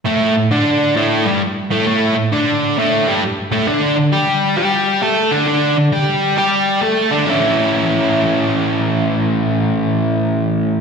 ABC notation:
X:1
M:4/4
L:1/8
Q:"Swing" 1/4=133
K:Amix
V:1 name="Overdriven electric guitar" clef=bass
[A,,A,] A,, [D,D]2 [A,,A,] [G,,G,] z [A,,A,] | [A,,A,] A,, [D,D]2 [A,,A,] [G,,G,] z [A,,A,] | [D,D] D, [G,G]2 [G,G]2 [A,A] [D,D] | [D,D] D, [G,G]2 [G,G]2 [A,A] [D,D] |
[A,,E,A,CE]8- | [A,,E,A,CE]8 |]